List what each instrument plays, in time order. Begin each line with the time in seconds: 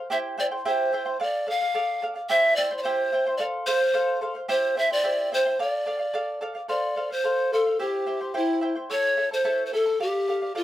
0.10 charango E4 G4 C5 E5 G5, pan flute E5
0.38 charango E4 C5 E5 G5, pan flute D5
0.52 charango E4 C5 G5
0.65 charango E4 G4 C5 E5 G5, pan flute C5
0.93 charango E4 C5 E5 G5
1.06 charango E4 C5 G5
1.20 charango A4 D5 F5, pan flute D5
1.47 charango A4 D5 F5, pan flute F5
1.61 charango D5 F5
1.74 charango A4 D5 F5
2.02 charango A4 D5 F5
2.16 charango D5 F5
2.29 charango E4 G4 C5 E5 G5, pan flute E5
2.56 charango E4 C5 E5 G5, pan flute D5
2.71 charango E4 C5 G5
2.78 pan flute D5
2.83 charango E4 G4 C5 E5 G5, pan flute C5
3.12 charango E4 C5 E5 G5
3.27 charango E4 C5 G5
3.37 charango A4 C5 F5, pan flute D5
3.66 charango A4 C5 F5, pan flute C5
3.81 charango C5 F5
3.94 charango A4 C5 F5
4.21 charango A4 C5 F5
4.35 charango C5 F5
4.48 charango E4 G4 C5 E5 G5, pan flute C5
4.76 charango E4 C5 E5 G5, pan flute E5
4.91 charango E4 C5 G5, pan flute D5
5.04 charango E4 G4 C5 E5 G5
5.32 charango E4 C5 E5 G5, pan flute C5
5.45 charango E4 C5 G5
5.59 charango A4 D5 F5, pan flute D5
5.86 charango A4 D5 F5
5.99 charango D5 F5
6.14 charango A4 D5 F5
6.41 charango A4 D5 F5
6.55 charango D5 F5
6.68 charango A4 C5 F5, pan flute D5
6.96 charango A4 C5 F5
7.10 charango C5 F5, pan flute C5
7.24 charango A4 C5 F5
7.52 charango A4 C5 F5, pan flute A4
7.66 charango C5 F5
7.79 charango E4 G4 C5 E5 G5, pan flute G4
8.07 charango E4 C5 E5 G5
8.21 charango E4 C5 G5
8.34 charango E4 G4 C5 E5 G5, pan flute E4
8.61 charango E4 C5 E5 G5
8.75 charango E4 C5 G5
8.90 charango E4 A4 C#5 E5 A5, pan flute C#5
9.17 charango E4 A4 E5 A5
9.31 charango E4 A4 A5, pan flute C5
9.44 charango E4 A4 C#5 E5 A5
9.66 pan flute C5
9.73 charango E4 A4 E5 A5, pan flute A4
9.86 charango E4 A4 A5
10.00 pan flute G4, charango A4 D5 F5
10.28 charango A4 D5 F5
10.42 charango D5 F5
10.55 pan flute F4, charango A4 D5 F5